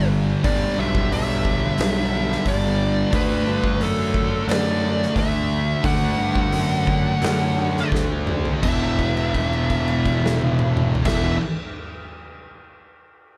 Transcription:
Already playing: picked electric bass G1, distorted electric guitar G2 D3 G3
0.44 picked electric bass G1, distorted electric guitar G2 D3 G3, lead electric guitar D5, kick, open hi-hat
0.78 picked electric bass B1, lead electric guitar E5
0.95 kick
1.12 picked electric bass B1, lead electric guitar E5, open hi-hat
1.45 kick
1.78 picked electric bass B1, distorted electric guitar G2 D3 G3, snare, open hi-hat
2.32 snare
2.45 picked electric bass G1, lead electric guitar D5, kick, open hi-hat
3.12 picked electric bass D2, distorted electric guitar D3 A3 D4, lead electric guitar B4, kick, open hi-hat
3.47 picked electric bass G2
3.64 kick
3.81 picked electric bass F#2, lead electric guitar A4, open hi-hat
4.14 kick
4.47 picked electric bass F#2, distorted electric guitar D3 A3 D4, lead electric guitar D5, open hi-hat
4.51 snare
5.03 snare
5.16 picked electric bass D2, lead electric guitar E5, kick, open hi-hat
5.83 picked electric bass D2, distorted electric guitar D3 A3 D4, lead electric guitar F#5, kick, open hi-hat
6.18 picked electric bass G2
6.35 kick
6.52 picked electric bass F#2, open hi-hat
6.87 kick
7.21 picked electric bass F#2, distorted electric guitar D3 A3 D4, snare, open hi-hat
7.77 snare
7.92 picked electric bass D2, kick, snare
8.27 mid tom
8.45 floor tom
8.62 picked electric bass E1, distorted electric guitar E2 B2 E3, lead electric guitar E5, kick, crash
8.99 kick, crash
9.17 crash
9.34 kick, crash
9.53 crash
9.70 kick, crash
9.88 crash
10.06 kick, crash
10.26 snare
10.41 high tom
10.59 mid tom
10.77 mid tom
10.95 floor tom
11.05 picked electric bass E1, distorted electric guitar E2 B2 E3, lead electric guitar E5, kick, snare, crash

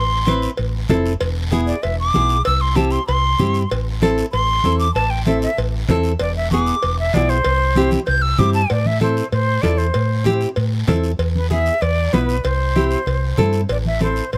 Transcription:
Already playing: fingered electric bass A1, flute C6
0.26 nylon-string guitar C4 E4 B4, high conga, short guiro
0.42 short guiro
0.57 fingered electric bass A1, cowbell, long guiro
0.89 fingered electric bass F1, nylon-string guitar C4 E4 A4, high conga, low conga, low timbale, short guiro
1.06 short guiro
1.20 fingered electric bass E1, cowbell, long guiro
1.51 nylon-string guitar B3 E4 G#4, high conga, short guiro
1.67 flute D5, short guiro
1.83 fingered electric bass E1, flute E5, cowbell, long guiro
2.00 flute D6
2.13 fingered electric bass B1, nylon-string guitar B3 E4 G#4, high conga, short guiro
2.29 short guiro
2.45 fingered electric bass C2, flute E6, cowbell, long guiro
2.61 flute C6
2.75 nylon-string guitar C4 E4 G4, flute A5, high conga, short guiro
2.90 flute C6, short guiro
3.07 fingered electric bass C2, flute C6, cowbell, long guiro
3.39 fingered electric bass G2, nylon-string guitar C4 E4 G4, high conga, low conga, short guiro
3.54 short guiro
3.70 fingered electric bass A1, cowbell, long guiro
4.02 nylon-string guitar C4 E4 A4, high conga, short guiro
4.18 short guiro
4.32 fingered electric bass A1, flute C6, cowbell, long guiro
4.64 fingered electric bass E2, nylon-string guitar C4 E4 A4, high conga, short guiro
4.79 flute D6, short guiro
4.94 fingered electric bass A1, flute A5, cowbell, long guiro
5.10 flute G5
5.25 nylon-string guitar C4 E4 A4, flute E5, high conga, short guiro
5.42 flute E5, short guiro
5.57 fingered electric bass A1, cowbell, long guiro
5.89 fingered electric bass E2, nylon-string guitar C4 E4 A4, high conga, low conga, low timbale, short guiro
6.03 short guiro
6.19 fingered electric bass E1, flute D5, cowbell, long guiro
6.36 flute E5
6.51 nylon-string guitar B3 E4 G#4, flute D6, high conga, short guiro
6.67 short guiro
6.83 fingered electric bass E1, cowbell, long guiro
6.99 flute E5
7.14 fingered electric bass B1, nylon-string guitar B3 E4 G#4, flute D5, high conga, low timbale, short guiro
7.29 flute C5, short guiro
7.45 fingered electric bass C2, cowbell, long guiro
7.76 nylon-string guitar C4 E4 G4, high conga, short guiro
7.91 high conga, short guiro
8.06 fingered electric bass C2, flute G6, cowbell, long guiro
8.22 flute E6
8.38 fingered electric bass G2, nylon-string guitar C4 E4 G4, flute D6, high conga, low conga, short guiro
8.53 flute A5, short guiro
8.70 fingered electric bass A2, flute D5, cowbell, long guiro
8.86 flute E5, high conga
9.01 nylon-string guitar C4 E4 A4, flute C5, high conga, short guiro
9.17 short guiro
9.32 fingered electric bass A2, flute C5, cowbell, long guiro
9.62 fingered electric bass E2, nylon-string guitar C4 E4 A4, flute D5, high conga, low timbale, short guiro
9.78 flute C5, short guiro
9.94 fingered electric bass A2, cowbell, long guiro
10.24 nylon-string guitar C4 E4 G4, high conga, short guiro
10.41 short guiro
10.56 fingered electric bass A2, cowbell, long guiro
10.87 fingered electric bass E2, nylon-string guitar C4 E4 A4, high conga, low conga, low timbale, short guiro
11.04 short guiro
11.19 fingered electric bass E2, cowbell, long guiro
11.36 flute B4, high conga
11.50 nylon-string guitar B3 E4 G#4, flute E5, high conga, short guiro
11.66 short guiro
11.81 fingered electric bass E2, flute D5, cowbell, long guiro
12.13 fingered electric bass B1, nylon-string guitar B3 E4 B4, flute B4, high conga, low timbale, short guiro
12.29 short guiro
12.44 fingered electric bass C2, flute C5, cowbell, long guiro
12.76 nylon-string guitar C4 E4 G4, high conga, short guiro
12.91 short guiro
13.06 fingered electric bass C2, cowbell, long guiro
13.37 fingered electric bass G2, nylon-string guitar C4 E4 A4, high conga, low conga, short guiro
13.53 short guiro
13.69 fingered electric bass A1, flute D5, cowbell, long guiro
13.86 flute E5, high conga
14.00 nylon-string guitar C4 E4 A4, flute C5, high conga, short guiro
14.16 short guiro
14.32 fingered electric bass A1, flute C5, cowbell, long guiro

